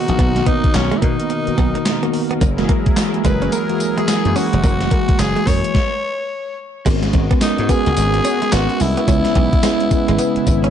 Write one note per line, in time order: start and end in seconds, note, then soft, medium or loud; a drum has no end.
0.00 2.37 B2 medium
0.00 0.36 D#3 loud
0.00 0.36 A#3 medium
0.00 0.36 B3 loud
0.00 2.37 D#4 medium
0.00 0.37 F#4 loud
0.00 0.48 F#4 loud
0.00 2.37 A#4 medium
0.08 0.17 A#1 medium
0.08 closed hi-hat medium
0.19 0.42 B1 loud
0.19 0.31 B3 medium
0.19 kick loud
0.19 closed hi-hat medium
0.36 0.68 D#3 medium
0.36 0.68 A#3 medium
0.36 0.69 B3 medium
0.36 0.69 F#4 medium
0.36 muted clean electric guitar stroke soft
0.36 snare medium
0.36 closed hi-hat medium
0.46 0.59 B3 medium
0.46 0.76 D#4 loud
0.46 kick loud
0.46 closed hi-hat medium
0.64 muted slap bass stroke medium
0.64 kick loud
0.64 closed hi-hat medium
0.74 0.89 B1 medium
0.74 0.99 C#4 medium
0.74 muted clean electric guitar stroke soft
0.74 snare loud
0.74 clap medium
0.74 closed hi-hat medium
0.91 1.24 D#3 medium
0.91 0.99 G#3 medium
0.91 1.24 A#3 medium
0.91 1.24 B3 medium
0.91 1.24 F#4 medium
0.91 closed hi-hat medium
0.98 1.04 E4 medium
1.02 1.16 B2 medium
1.02 1.14 A#3 medium
1.02 2.14 D#4 medium
1.02 kick medium
1.02 closed hi-hat medium
1.20 closed hi-hat medium
1.30 muted clean electric guitar stroke medium
1.30 closed hi-hat medium
1.47 1.79 D#3 medium
1.47 1.80 A#3 medium
1.47 1.80 B3 medium
1.47 1.80 F#4 loud
1.47 muted slap bass stroke soft
1.47 closed hi-hat soft
1.58 1.72 B1 medium
1.58 1.70 B3 medium
1.58 kick loud
1.58 closed hi-hat medium
1.75 1.83 A#3 medium
1.75 closed hi-hat medium
1.86 snare loud
1.86 clap loud
1.86 closed hi-hat medium
2.02 2.35 D#3 medium
2.02 2.35 A#3 medium
2.02 2.11 A#3 medium
2.02 2.35 B3 medium
2.02 2.35 F#4 loud
2.02 closed hi-hat soft
2.14 muted clean electric guitar stroke soft
2.14 open hi-hat medium
2.31 2.38 B3 medium
2.31 closed hi-hat medium
2.41 2.64 F#1 loud
2.41 5.71 F#3 medium
2.41 2.54 A#3 medium
2.41 5.71 E4 medium
2.41 5.71 G#4 medium
2.41 5.71 A#4 medium
2.41 kick loud
2.41 closed hi-hat medium
2.41 tambourine medium
2.58 2.90 E3 loud
2.58 2.91 G#3 medium
2.58 2.91 A#3 medium
2.58 2.91 F#4 loud
2.58 muted clean electric guitar stroke soft
2.58 snare medium
2.58 closed hi-hat medium
2.69 2.81 A#3 medium
2.69 kick loud
2.69 closed hi-hat medium
2.86 muted slap bass stroke soft
2.86 kick loud
2.86 closed hi-hat medium
2.97 muted clean electric guitar stroke soft
2.97 snare loud
2.97 clap medium
2.97 closed hi-hat medium
2.97 tambourine medium
3.13 3.46 E3 medium
3.13 3.46 G#3 medium
3.13 3.46 A#3 medium
3.13 3.47 F#4 medium
3.13 closed hi-hat medium
3.25 3.47 F#1 loud
3.25 3.37 G#3 medium
3.25 3.55 B4 medium
3.25 kick medium
3.25 closed hi-hat medium
3.25 tambourine medium
3.42 3.50 C#4 medium
3.42 closed hi-hat medium
3.52 3.65 A#3 medium
3.52 4.00 A#4 medium
3.52 closed hi-hat medium
3.52 tambourine medium
3.69 4.02 E3 medium
3.69 4.02 G#3 medium
3.69 4.02 A#3 medium
3.69 4.02 F#4 medium
3.69 muted clean electric guitar stroke soft
3.69 closed hi-hat soft
3.80 closed hi-hat medium
3.80 tambourine medium
3.98 4.05 G#3 medium
3.98 4.38 G#4 medium
3.98 closed hi-hat medium
4.08 snare loud
4.08 clap loud
4.08 closed hi-hat medium
4.08 tambourine medium
4.24 4.34 F#2 medium
4.24 4.57 E3 medium
4.24 4.57 G#3 medium
4.24 4.57 A#3 medium
4.24 4.58 F#4 medium
4.24 closed hi-hat soft
4.36 4.48 C#4 medium
4.36 5.21 F#4 loud
4.36 open hi-hat medium
4.36 tambourine medium
4.53 4.62 F1 medium
4.53 closed hi-hat medium
4.63 4.86 F#1 loud
4.63 4.76 A#3 medium
4.63 kick loud
4.63 closed hi-hat medium
4.63 tambourine medium
4.80 5.13 E3 medium
4.80 5.13 G#3 medium
4.80 5.13 A#3 medium
4.80 5.13 F#4 medium
4.80 muted clean electric guitar stroke soft
4.80 snare medium
4.80 closed hi-hat medium
4.91 5.04 A#3 medium
4.91 kick loud
4.91 closed hi-hat medium
5.09 muted slap bass stroke soft
5.09 kick loud
5.09 closed hi-hat medium
5.19 5.33 F#1 medium
5.19 5.49 G#4 loud
5.19 muted clean electric guitar stroke soft
5.19 snare loud
5.19 clap medium
5.19 closed hi-hat medium
5.19 tambourine medium
5.36 5.68 E3 medium
5.36 5.68 G#3 medium
5.36 5.44 G#3 medium
5.36 5.69 A#3 medium
5.36 5.69 F#4 medium
5.36 closed hi-hat medium
5.47 5.61 F#2 medium
5.47 5.59 A#3 medium
5.47 6.58 C#5 loud
5.47 kick medium
5.47 open hi-hat medium
5.47 tambourine medium
5.64 closed hi-hat medium
5.75 kick loud
5.75 snare loud
6.85 7.08 G#1 loud
6.85 7.21 G#3 medium
6.85 6.98 G#3 medium
6.85 9.06 G#3 medium
6.85 7.21 B3 medium
6.85 10.70 B3 medium
6.85 7.21 C#4 medium
6.85 9.06 F#4 medium
6.85 7.21 F#4 medium
6.85 7.21 A#4 loud
6.85 kick loud
6.85 closed hi-hat medium
6.85 crash loud
6.85 tambourine medium
7.03 snare medium
7.03 closed hi-hat medium
7.13 7.27 G#1 loud
7.13 muted clean electric guitar stroke soft
7.13 kick loud
7.13 closed hi-hat medium
7.31 7.38 B3 medium
7.31 kick loud
7.31 closed hi-hat medium
7.41 7.60 G#3 medium
7.41 7.61 B3 medium
7.41 7.61 C#4 medium
7.41 7.72 D#4 medium
7.41 7.61 F#4 medium
7.41 7.61 A#4 medium
7.41 muted slap bass stroke soft
7.41 snare loud
7.41 clap medium
7.41 closed hi-hat medium
7.41 tambourine medium
7.58 7.67 G#2 loud
7.58 closed hi-hat medium
7.69 8.21 G#3 medium
7.69 8.21 B3 medium
7.69 7.81 B3 medium
7.69 8.21 C#4 medium
7.69 8.21 F#4 medium
7.69 8.55 G#4 loud
7.69 8.21 A#4 loud
7.69 kick medium
7.69 closed hi-hat medium
7.69 tambourine medium
7.86 7.95 C#2 medium
7.86 closed hi-hat medium
7.97 8.19 G#1 medium
7.97 muted clean electric guitar stroke soft
7.97 closed hi-hat medium
7.97 tambourine medium
8.14 closed hi-hat soft
8.25 8.37 C#4 medium
8.25 closed hi-hat medium
8.25 tambourine medium
8.42 8.50 G#3 medium
8.42 closed hi-hat medium
8.52 8.67 G#1 medium
8.52 8.87 G#3 medium
8.52 8.87 B3 medium
8.52 8.65 B3 medium
8.52 8.87 C#4 medium
8.52 8.88 F#4 medium
8.52 8.83 F#4 loud
8.52 8.88 A#4 medium
8.52 snare loud
8.52 clap loud
8.52 closed hi-hat medium
8.52 tambourine medium
8.70 muted clean electric guitar stroke soft
8.70 closed hi-hat soft
8.80 8.94 C2 loud
8.80 10.70 E4 loud
8.80 open hi-hat medium
8.80 tambourine medium
8.97 9.05 B3 medium
8.97 closed hi-hat medium
9.07 9.22 C#2 loud
9.07 10.70 C#3 medium
9.07 9.43 G#3 medium
9.07 9.43 B3 medium
9.07 9.20 C#4 medium
9.07 9.43 C#4 medium
9.07 10.70 E4 medium
9.07 9.43 E4 medium
9.07 9.43 B4 medium
9.07 kick loud
9.07 closed hi-hat medium
9.07 tambourine medium
9.25 muted clean electric guitar stroke soft
9.25 snare medium
9.25 closed hi-hat medium
9.35 9.50 B1 medium
9.35 9.48 B3 medium
9.35 kick loud
9.35 closed hi-hat medium
9.53 kick loud
9.53 closed hi-hat medium
9.63 9.83 G#3 loud
9.63 9.76 G#3 medium
9.63 9.83 B3 medium
9.63 9.83 C#4 medium
9.63 9.83 E4 medium
9.63 9.83 B4 loud
9.63 snare loud
9.63 clap medium
9.63 closed hi-hat medium
9.63 tambourine medium
9.80 closed hi-hat soft
9.91 10.43 G#3 loud
9.91 10.43 B3 loud
9.91 10.43 C#4 medium
9.91 10.43 E4 medium
9.91 10.43 B4 loud
9.91 muted clean electric guitar stroke soft
9.91 muted slap bass stroke soft
9.91 kick medium
9.91 closed hi-hat medium
9.91 tambourine medium
10.08 10.17 G#1 medium
10.08 10.16 G#3 medium
10.08 closed hi-hat medium
10.18 10.31 B3 medium
10.18 closed hi-hat medium
10.18 tambourine medium
10.36 muted clean electric guitar stroke soft
10.36 muted slap bass stroke soft
10.36 closed hi-hat soft
10.47 10.69 G#1 loud
10.47 kick loud
10.47 closed hi-hat medium
10.47 tambourine medium
10.64 10.70 C#4 medium
10.64 closed hi-hat medium